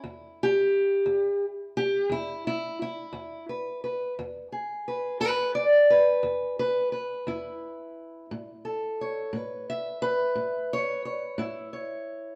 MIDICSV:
0, 0, Header, 1, 2, 480
1, 0, Start_track
1, 0, Key_signature, 4, "major"
1, 0, Tempo, 686499
1, 35, Time_signature, 12, 3, 24, 8
1, 8637, End_track
2, 0, Start_track
2, 0, Title_t, "Steel-string acoustic guitar"
2, 0, Program_c, 0, 25
2, 0, Note_on_c, 0, 64, 42
2, 25, Note_on_c, 0, 40, 72
2, 301, Note_on_c, 0, 67, 94
2, 461, Note_off_c, 0, 40, 0
2, 739, Note_on_c, 0, 40, 67
2, 1007, Note_off_c, 0, 67, 0
2, 1178, Note_off_c, 0, 40, 0
2, 1237, Note_on_c, 0, 67, 91
2, 1465, Note_on_c, 0, 40, 73
2, 1475, Note_off_c, 0, 67, 0
2, 1479, Note_off_c, 0, 64, 0
2, 1482, Note_on_c, 0, 64, 86
2, 1718, Note_off_c, 0, 64, 0
2, 1727, Note_on_c, 0, 64, 77
2, 1901, Note_off_c, 0, 40, 0
2, 1960, Note_off_c, 0, 64, 0
2, 1972, Note_on_c, 0, 64, 73
2, 2186, Note_on_c, 0, 40, 73
2, 2439, Note_off_c, 0, 64, 0
2, 2442, Note_on_c, 0, 71, 47
2, 2621, Note_off_c, 0, 40, 0
2, 2675, Note_off_c, 0, 71, 0
2, 2684, Note_on_c, 0, 71, 44
2, 2889, Note_off_c, 0, 71, 0
2, 2928, Note_on_c, 0, 40, 76
2, 3163, Note_on_c, 0, 68, 43
2, 3352, Note_off_c, 0, 40, 0
2, 3411, Note_on_c, 0, 71, 46
2, 3632, Note_off_c, 0, 71, 0
2, 3637, Note_on_c, 0, 40, 63
2, 3640, Note_on_c, 0, 71, 93
2, 3876, Note_off_c, 0, 71, 0
2, 3880, Note_on_c, 0, 74, 86
2, 4067, Note_off_c, 0, 40, 0
2, 4116, Note_off_c, 0, 74, 0
2, 4128, Note_on_c, 0, 71, 85
2, 4355, Note_on_c, 0, 40, 78
2, 4600, Note_off_c, 0, 71, 0
2, 4610, Note_on_c, 0, 71, 78
2, 4786, Note_off_c, 0, 40, 0
2, 4831, Note_off_c, 0, 71, 0
2, 4839, Note_on_c, 0, 71, 44
2, 5081, Note_on_c, 0, 40, 75
2, 5088, Note_on_c, 0, 64, 52
2, 5509, Note_off_c, 0, 40, 0
2, 5768, Note_off_c, 0, 71, 0
2, 5770, Note_off_c, 0, 68, 0
2, 5812, Note_on_c, 0, 45, 68
2, 6047, Note_on_c, 0, 69, 43
2, 6235, Note_off_c, 0, 45, 0
2, 6302, Note_on_c, 0, 73, 42
2, 6522, Note_on_c, 0, 45, 72
2, 6551, Note_off_c, 0, 69, 0
2, 6551, Note_on_c, 0, 71, 83
2, 6777, Note_off_c, 0, 73, 0
2, 6780, Note_on_c, 0, 76, 75
2, 6950, Note_off_c, 0, 45, 0
2, 6998, Note_off_c, 0, 71, 0
2, 7006, Note_on_c, 0, 71, 84
2, 7239, Note_on_c, 0, 45, 68
2, 7487, Note_off_c, 0, 76, 0
2, 7504, Note_on_c, 0, 73, 81
2, 7535, Note_off_c, 0, 64, 0
2, 7669, Note_off_c, 0, 45, 0
2, 7720, Note_off_c, 0, 73, 0
2, 7728, Note_on_c, 0, 73, 48
2, 7956, Note_on_c, 0, 45, 80
2, 7961, Note_off_c, 0, 71, 0
2, 7963, Note_on_c, 0, 64, 50
2, 8199, Note_off_c, 0, 73, 0
2, 8201, Note_on_c, 0, 73, 48
2, 8388, Note_off_c, 0, 45, 0
2, 8637, Note_off_c, 0, 64, 0
2, 8637, Note_off_c, 0, 73, 0
2, 8637, End_track
0, 0, End_of_file